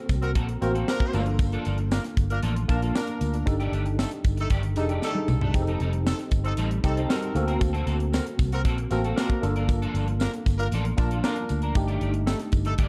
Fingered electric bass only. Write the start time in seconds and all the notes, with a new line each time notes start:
0.09 C2
0.36 A#1
0.62 A1
1.14 G1
1.66 G1
2.17 G1
2.43 A1
2.69 A#1
3.21 D2
3.47 G1
3.72 G1
4.25 G1
4.51 G1
4.77 F1
5.28 C2
5.54 F1
5.81 F1
6.31 G1
6.58 A1
6.84 C2
7.35 D2
7.61 D2
7.87 D2
8.39 C2
8.65 A#1
8.91 A1
9.43 G1
9.94 G1
10.46 G1
10.72 A1
10.98 A#1
11.50 D2
11.76 G1
12.01 G1
12.53 G1
12.78 G1